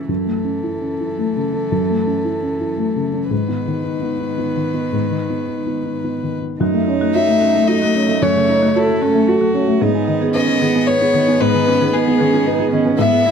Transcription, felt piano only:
0.00 0.12 C#2 soft
0.00 0.12 G#3 soft
0.00 0.12 C#4 soft
0.00 0.12 E4 soft
0.00 0.12 G#4 soft
0.00 0.11 C#6 soft
0.00 0.11 D#6 medium
0.09 1.67 F#2 soft
0.26 0.56 A3 soft
0.44 0.74 C#4 soft
0.63 0.92 E4 soft
0.81 1.11 C#4 soft
1.00 1.29 E4 soft
1.18 1.47 A3 soft
1.36 1.65 C#3 soft
1.54 1.82 C#4 soft
1.72 3.28 F#2 soft
1.90 2.18 A3 soft
2.07 2.35 C#4 soft
2.24 2.53 E4 soft
2.43 2.71 C#4 soft
2.60 2.89 E4 soft
2.78 3.06 A3 soft
2.96 3.24 C#3 soft
3.13 3.31 C#4 soft
3.31 4.88 G#2 soft
3.48 3.77 B3 soft
3.67 3.95 D#3 soft
3.84 4.13 D#4 soft
4.02 4.31 B3 soft
4.20 4.49 D#4 soft
4.38 4.67 B3 soft
4.56 4.85 D#3 soft
4.74 5.04 B3 soft
4.92 6.56 G#2 soft
5.11 5.41 D#3 soft
5.30 5.60 B3 soft
5.48 5.78 D#4 soft
5.67 5.97 B3 soft
5.85 6.15 D#4 soft
6.04 6.34 B3 soft
6.23 6.53 D#3 soft
6.42 6.60 B3 soft
6.60 8.18 F#2 medium
6.74 6.96 A3 medium
6.88 7.09 C#4 medium
7.02 7.23 A3 soft
7.15 7.36 F#4 medium
7.28 7.49 A3 medium
7.41 7.63 C#4 medium
7.55 7.76 A3 medium
7.69 7.90 F#4 medium
7.82 8.03 A3 medium
7.95 8.17 C#4 medium
8.09 8.30 A3 medium
8.22 9.77 F#2 medium
8.36 8.57 C#3 medium
8.49 8.70 C#4 medium
8.62 8.83 A3 medium
8.76 8.96 F#4 medium
8.89 9.09 A3 medium
9.02 9.23 C#4 medium
9.15 9.36 A3 medium
9.28 9.49 F#4 medium
9.41 9.62 A3 medium
9.54 9.76 C#4 medium
9.68 9.81 A3 medium
9.81 11.37 G#2 medium
9.94 10.16 B3 medium
10.08 10.29 D#3 medium
10.21 10.43 B3 medium
10.35 10.56 B4 medium
10.48 10.69 B3 medium
10.62 10.83 D#3 medium
10.75 10.96 B3 medium
10.88 11.09 B4 medium
11.02 11.23 B3 medium
11.14 11.36 D#3 medium
11.28 11.49 B3 medium
11.41 12.95 G#2 medium
11.54 11.75 D#3 medium
11.68 11.88 B3 medium
11.81 12.02 D#3 medium
11.94 12.15 B4 medium
12.08 12.28 B3 medium
12.21 12.41 D#3 medium
12.34 12.54 B3 medium
12.47 12.68 B4 medium
12.60 12.81 B3 medium
12.73 12.94 D#3 medium
12.85 12.99 B3 medium
12.98 13.31 G#2 medium
13.12 13.31 G#3 medium
13.26 13.31 B3 medium

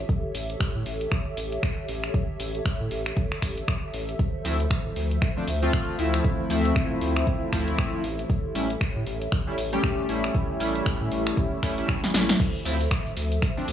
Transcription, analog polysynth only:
4.44 4.56 F3 medium
4.44 4.56 A3 medium
4.44 4.56 C4 medium
4.44 4.56 E4 medium
5.37 5.44 F3 medium
5.37 5.45 A3 medium
5.37 5.45 C4 medium
5.37 5.45 D4 medium
5.62 5.96 F3 loud
5.62 5.96 A3 medium
5.62 5.96 C4 medium
5.62 5.97 F4 loud
5.99 6.47 F3 medium
5.99 6.48 A3 medium
5.99 6.48 C4 medium
5.99 6.48 E4 loud
6.49 7.50 F3 medium
6.49 7.50 A3 medium
6.49 7.50 C4 medium
6.49 7.51 E4 loud
7.52 8.02 F3 loud
7.52 8.03 A3 loud
7.52 8.03 C4 loud
7.52 8.03 E4 loud
8.55 8.66 G3 medium
8.55 8.66 A3 medium
8.55 8.66 C#4 medium
8.55 8.66 E4 medium
9.47 9.55 G3 medium
9.47 9.55 A3 medium
9.47 9.55 C#4 medium
9.47 9.55 E4 medium
9.73 10.06 G3 loud
9.73 10.06 A3 loud
9.73 10.07 C#4 medium
9.73 10.07 G4 loud
10.09 10.58 G3 medium
10.09 10.58 A3 medium
10.09 10.58 C#4 medium
10.09 10.58 E4 loud
10.60 11.60 G3 medium
10.60 11.60 A3 medium
10.60 11.61 C#4 medium
10.60 11.61 E4 loud
11.62 11.74 G3 medium
11.62 11.74 A3 medium
11.62 11.74 C#4 medium
11.62 11.75 E4 loud
11.78 12.11 G3 medium
11.78 12.12 A3 medium
11.78 12.12 C#4 medium
11.78 12.12 E4 loud
12.14 12.31 G3 medium
12.14 12.31 A3 medium
12.14 12.31 C#4 medium
12.14 12.31 E4 medium
12.65 12.76 F3 medium
12.65 12.76 A3 medium
12.65 12.76 C4 medium
12.65 12.77 E4 medium
13.57 13.65 F3 medium
13.57 13.65 A3 medium
13.57 13.65 C4 medium
13.57 13.65 D4 medium

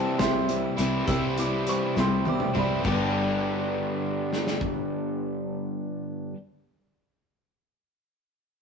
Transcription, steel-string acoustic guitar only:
0.00 0.19 G3 medium
0.00 0.18 C4 medium
0.00 0.18 E4 medium
0.00 0.18 C5 medium
0.19 0.49 C3 medium
0.19 0.47 G3 medium
0.19 0.47 C4 medium
0.19 0.48 E4 medium
0.19 0.48 C5 medium
0.48 0.77 G3 soft
0.48 0.78 C4 soft
0.48 0.78 E4 medium
0.48 0.76 C5 soft
0.78 1.07 C4 soft
0.78 1.08 E4 soft
0.78 1.07 C5 soft
1.07 1.36 C3 medium
1.07 1.37 G3 medium
1.07 1.37 C4 medium
1.07 1.37 E4 medium
1.07 1.35 C5 medium
1.36 1.66 C4 soft
1.36 1.67 E4 soft
1.36 1.66 C5 soft
1.66 1.96 G3 medium
1.66 1.96 C4 medium
1.66 1.96 E4 medium
1.66 1.95 C5 medium
1.96 2.26 C3 medium
1.96 2.24 G3 medium
1.96 2.25 C4 medium
1.96 2.25 E4 medium
1.96 2.25 C5 medium
2.25 2.54 G3 medium
2.25 2.55 C4 medium
2.25 2.55 E4 soft
2.25 2.54 C5 medium
2.55 2.85 C4 soft
2.55 2.85 E4 soft
2.55 2.84 C5 soft
2.80 6.30 G2 medium
2.80 6.33 D3 medium
2.86 6.36 G3 medium
2.86 6.39 B3 medium
2.92 6.42 D4 medium
2.92 6.44 B4 medium

